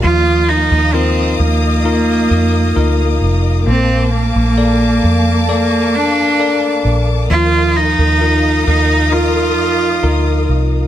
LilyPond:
<<
  \new Staff \with { instrumentName = "String section" } { \time 4/4 \key ees \lydian \tempo 4 = 66 << { <ees'' f'' ees'''>1 | <f'' a'' d'''>1 | <ees'' f'' ees'''>1 | } \\ { bes1~ | bes1 | bes'1 | } >> }
  \new Staff \with { instrumentName = "Tine electric piano" } { \time 4/4 \key ees \lydian f4 <ees' f' bes'>4 <ees' f' bes'>4 <ees' f' bes'>4 | bes4 <a' bes' d''>4 <a' bes' d''>4 <a' bes' d''>4 | f4 <ees' f' bes'>4 <ees' f' bes'>4 <ees' f' bes'>4 | }
  \new Staff \with { instrumentName = "Cello" } { \time 4/4 \key ees \lydian f'8 ees'8 c'8 bes2 r8 | c'8 bes4. bes8 d'4 r8 | f'8 ees'4 ees'8 f'4. r8 | }
  \new Staff \with { instrumentName = "Fingered electric bass" } { \clef bass \time 4/4 \key ees \lydian ees,8. ees,8. ees,4 f,8 d,8 f,,8 | bes,,8. bes,,8. f,2 bes,,8 | ees,8. ees,8. ees,4 f,8 d,8 c,8 | }
>>